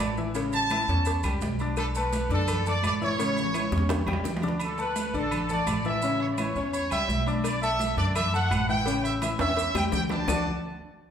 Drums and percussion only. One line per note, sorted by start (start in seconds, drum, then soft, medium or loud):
0.00 cowbell medium
0.00 low timbale loud
0.00 low agogo loud
0.00 claves medium
0.17 maracas soft
0.35 cowbell loud
0.35 high conga soft
0.35 low agogo medium
0.35 maracas medium
0.52 high conga soft
0.52 low agogo medium
0.52 maracas medium
0.70 cowbell medium
0.70 high conga loud
0.70 low timbale medium
0.70 low agogo loud
0.70 claves medium
0.70 maracas medium
0.88 cowbell medium
0.88 high conga soft
0.88 maracas soft
1.05 cowbell loud
1.05 high conga soft
1.05 low agogo medium
1.05 maracas medium
1.23 cowbell medium
1.23 high conga soft
1.23 low agogo loud
1.23 claves medium
1.23 maracas medium
1.41 cowbell medium
1.41 high conga medium
1.41 low timbale medium
1.41 maracas medium
1.59 low agogo medium
1.59 maracas soft
1.77 cowbell loud
1.77 high conga soft
1.77 low agogo loud
1.77 claves medium
1.77 maracas medium
1.95 high conga soft
1.95 maracas medium
2.13 cowbell medium
2.13 high conga loud
2.13 low timbale medium
2.13 low agogo medium
2.13 maracas medium
2.30 cowbell medium
2.30 high conga soft
2.30 maracas soft
2.48 cowbell loud
2.48 high conga soft
2.48 low conga medium
2.48 low agogo loud
2.48 claves medium
2.48 maracas medium
2.65 high conga soft
2.65 low conga medium
2.65 maracas medium
2.83 cowbell medium
2.83 high conga medium
2.83 low timbale medium
2.83 low agogo loud
2.83 claves medium
2.83 maracas medium
3.01 high conga medium
3.01 maracas soft
3.19 cowbell loud
3.19 high conga loud
3.19 low agogo medium
3.19 maracas medium
3.30 high conga medium
3.36 low agogo medium
3.36 maracas medium
3.42 low conga medium
3.54 cowbell medium
3.54 high conga medium
3.54 low timbale medium
3.54 low agogo loud
3.54 claves medium
3.54 maracas medium
3.72 cowbell medium
3.72 high bongo loud
3.72 maracas soft
3.77 low conga loud
3.89 cowbell loud
3.89 high bongo medium
3.89 high timbale loud
3.89 low agogo medium
3.89 maracas medium
4.01 low conga loud
4.07 cowbell medium
4.07 high bongo loud
4.07 low agogo loud
4.07 claves medium
4.13 low conga medium
4.13 low timbale loud
4.24 cowbell medium
4.24 low bongo medium
4.24 low conga medium
4.24 low timbale medium
4.24 maracas medium
4.36 low conga loud
4.36 low timbale loud
4.42 low bongo medium
4.42 low agogo medium
4.42 maracas soft
4.48 low conga medium
4.48 low timbale medium
4.60 high conga soft
4.60 low agogo loud
4.60 claves medium
4.60 maracas medium
4.78 high conga soft
4.78 maracas medium
4.96 high conga loud
4.96 low timbale medium
4.96 low agogo medium
4.96 maracas medium
5.14 high conga soft
5.14 maracas soft
5.31 high conga soft
5.31 low conga medium
5.31 low agogo loud
5.31 claves medium
5.31 maracas medium
5.49 high conga soft
5.49 low conga medium
5.49 maracas medium
5.67 high conga medium
5.67 low timbale medium
5.67 low agogo loud
5.67 claves medium
5.67 maracas medium
5.84 maracas soft
6.02 high conga soft
6.02 low agogo medium
6.02 maracas medium
6.20 high conga soft
6.20 low agogo medium
6.38 high conga loud
6.38 low timbale medium
6.38 low agogo loud
6.38 claves medium
6.38 maracas medium
6.56 high conga soft
6.56 maracas soft
6.73 high conga soft
6.73 low agogo medium
6.73 maracas medium
6.90 low agogo loud
6.90 claves medium
6.90 maracas medium
7.08 high conga medium
7.08 low timbale medium
7.08 maracas medium
7.27 high conga medium
7.27 low agogo medium
7.27 maracas soft
7.44 cowbell loud
7.44 high conga soft
7.44 low agogo loud
7.44 claves medium
7.44 maracas medium
7.62 high conga soft
7.62 maracas medium
7.79 cowbell medium
7.79 high conga loud
7.79 low timbale medium
7.79 low agogo medium
7.79 maracas medium
7.98 cowbell medium
7.98 high conga soft
7.98 maracas soft
8.15 cowbell loud
8.15 high conga soft
8.15 low conga medium
8.15 low agogo loud
8.15 claves medium
8.15 maracas medium
8.34 high conga soft
8.34 maracas medium
8.51 cowbell medium
8.51 high conga medium
8.51 low timbale medium
8.51 low agogo loud
8.51 claves medium
8.51 maracas medium
8.69 high conga medium
8.69 maracas soft
8.86 cowbell loud
8.86 low agogo medium
8.86 maracas medium
9.04 high conga soft
9.04 low agogo medium
9.04 maracas medium
9.22 cowbell medium
9.22 high conga loud
9.22 low timbale medium
9.22 low agogo loud
9.22 claves medium
9.22 maracas medium
9.39 cowbell medium
9.39 high conga soft
9.39 high timbale loud
9.39 maracas soft
9.57 cowbell loud
9.57 high conga soft
9.57 low agogo medium
9.57 maracas medium
9.75 cowbell medium
9.75 high bongo loud
9.75 high conga medium
9.75 low agogo loud
9.75 claves medium
9.75 maracas medium
9.92 cowbell medium
9.92 low bongo medium
9.92 low conga loud
9.92 low timbale medium
9.92 maracas medium
10.09 low bongo medium
10.09 low conga medium
10.09 low timbale loud
10.09 low agogo medium
10.09 maracas soft
10.28 low bongo loud
10.28 low conga loud
10.28 low timbale loud
10.28 claves loud
10.28 maracas loud